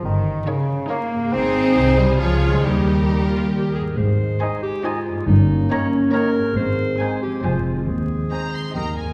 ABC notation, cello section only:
X:1
M:3/4
L:1/16
Q:1/4=138
K:Ab
V:1 name="Cello section" clef=bass
E,4 D,4 B,4 | C6 G,2 F,3 A, | G,8 z4 | A,,4 z8 |
G,,4 z8 | A,,4 z4 F,,4 | E,,4 z4 E,,4 |]